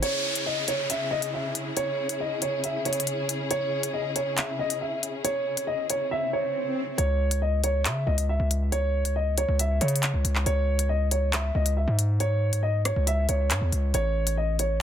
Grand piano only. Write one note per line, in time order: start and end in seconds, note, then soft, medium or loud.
0.02 0.43 C#5 loud
0.46 0.63 D#5 medium
0.68 0.85 C#5 medium
0.90 1.06 E5 medium
1.11 1.28 D#5 medium
1.34 1.50 E5 medium
1.77 2.18 C#5 loud
2.20 2.37 D#5 medium
2.42 2.59 C#5 medium
2.64 2.81 E5 medium
2.86 3.47 C#5 medium
3.51 3.92 C#5 loud
3.93 4.10 D#5 medium
4.16 4.33 C#5 medium
4.38 4.54 E5 medium
4.59 4.76 D#5 medium
4.81 4.98 E5 medium
5.24 5.65 C#5 medium
5.67 5.84 D#5 medium
5.90 6.07 C#5 medium
6.11 6.28 E5 loud
6.33 6.94 C#5 medium
6.98 7.39 C#5 loud
7.42 7.59 D#5 medium
7.64 7.80 C#5 medium
7.85 8.02 E5 medium
8.07 8.24 D#5 medium
8.29 8.46 E5 medium
8.72 9.13 C#5 loud
9.16 9.33 D#5 medium
9.38 9.54 C#5 medium
9.60 9.76 E5 medium
9.81 10.43 C#5 medium
10.46 10.87 C#5 loud
10.89 11.06 D#5 medium
11.11 11.28 C#5 medium
11.33 11.50 E5 medium
11.55 11.72 D#5 medium
11.77 11.93 E5 medium
12.20 12.61 C#5 loud
12.63 12.80 D#5 medium
12.86 13.02 C#5 medium
13.07 13.24 E5 loud
13.29 13.90 C#5 medium
13.95 14.35 C#5 loud
14.37 14.54 D#5 medium
14.59 14.76 C#5 medium